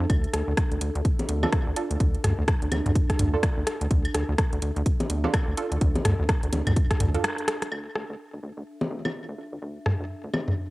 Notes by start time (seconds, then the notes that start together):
Already playing: D4 A4 E5
0.10 D2, kick, closed hi-hat, claves
0.24 closed hi-hat
0.33 D2, cross-stick, closed hi-hat
0.48 D2
0.57 kick, cross-stick, closed hi-hat
0.71 D2, closed hi-hat
0.81 D2, closed hi-hat
0.95 D2, closed hi-hat
1.05 kick, closed hi-hat
1.19 closed hi-hat, low bongo
1.29 D2, closed hi-hat
1.43 D4 F4 A4, low bongo, claves
1.53 kick, cross-stick, closed hi-hat
1.67 D2
1.76 D4 F4 A4, closed hi-hat
1.91 D2, closed hi-hat
2.00 D2, kick, closed hi-hat
2.15 closed hi-hat
2.24 D2, cross-stick, closed hi-hat, mid tom
2.38 D2
2.48 kick, cross-stick, closed hi-hat
2.62 D2, closed hi-hat
2.72 D2, closed hi-hat, low bongo, claves
2.86 D2, closed hi-hat, mid tom
2.95 kick, closed hi-hat
3.10 kick, cross-stick, closed hi-hat
3.19 D2, closed hi-hat, mid tom
3.34 D4 F4 A4
3.43 kick, cross-stick, closed hi-hat
3.57 D2
3.67 cross-stick, closed hi-hat
3.81 D2, closed hi-hat
3.91 D2, kick, closed hi-hat
4.05 closed hi-hat, claves
4.14 D2, cross-stick, closed hi-hat
4.29 D2
4.38 kick, cross-stick, closed hi-hat
4.53 D2, closed hi-hat
4.62 D2, closed hi-hat
4.76 D2, closed hi-hat
4.86 kick, closed hi-hat
5.00 closed hi-hat, low bongo
5.10 D2, closed hi-hat
5.24 D4 F4 A4, low bongo
5.34 kick, cross-stick, closed hi-hat, claves
5.48 D2
5.57 D4 F4 A4, closed hi-hat
5.71 D2, closed hi-hat
5.81 D2, kick, closed hi-hat
5.95 closed hi-hat, low bongo
6.05 D2, cross-stick, closed hi-hat, mid tom
6.19 D2
6.29 kick, cross-stick, closed hi-hat
6.43 D2, closed hi-hat
6.53 D2, closed hi-hat, low bongo
6.67 D2, closed hi-hat, mid tom, claves
6.76 kick, closed hi-hat
6.91 kick, cross-stick, closed hi-hat
7.00 D2, closed hi-hat, mid tom
7.14 D4 F4 A4, closed hi-hat
7.24 cross-stick, closed hi-hat
7.38 closed hi-hat
7.48 cross-stick, closed hi-hat
7.62 cross-stick, closed hi-hat
7.71 D2 D4, claves
7.95 D2, cross-stick
8.10 D2
8.16 A4
8.31 D2 E5
8.43 D2
8.57 D2
8.81 low bongo
8.91 D2
9.05 D4 F4 A4, low bongo, claves
9.29 D2
9.38 D4 F4 A4
9.52 D2
9.62 D2
9.86 D2, cross-stick, mid tom
10.00 D2
10.24 D2
10.33 D2, low bongo, claves
10.48 D2, mid tom